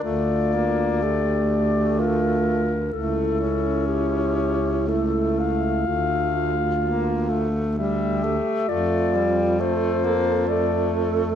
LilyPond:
<<
  \new Staff \with { instrumentName = "Clarinet" } { \time 3/4 \key d \minor \tempo 4 = 64 d''2 bes'4 | a'4 g'4 a'8 f''8~ | f''4. r8 e''4 | d''4 c''4 d''8 r8 | }
  \new Staff \with { instrumentName = "Alto saxophone" } { \time 3/4 \key d \minor f'4 g'4 f'4 | e'2 e'4 | f'8 f'4 r8 g'4 | f'4 a'2 | }
  \new Staff \with { instrumentName = "Tenor saxophone" } { \time 3/4 \key d \minor a8 bes8 a2 | a8 cis'4. a4 | a8 r8 bes8 a8 g8 a8 | a8 g8 a8 bes8 a4 | }
  \new Staff \with { instrumentName = "Baritone saxophone" } { \clef bass \time 3/4 \key d \minor d,2. | cis,2. | d,2~ d,8 r8 | f,2. | }
>>